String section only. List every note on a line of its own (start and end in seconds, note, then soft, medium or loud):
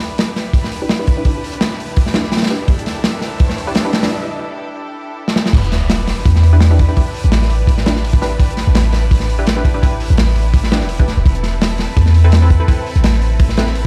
0.00 5.50 D4 medium
0.00 5.50 E4 medium
0.00 5.50 G4 medium
0.00 2.66 B4 medium
2.68 5.51 A4 medium
5.54 11.21 D4 medium
5.54 13.87 E4 medium
5.54 11.21 G4 medium
5.54 11.21 B4 medium
11.25 13.87 C4 medium
11.25 13.87 A4 medium
11.25 13.87 B4 medium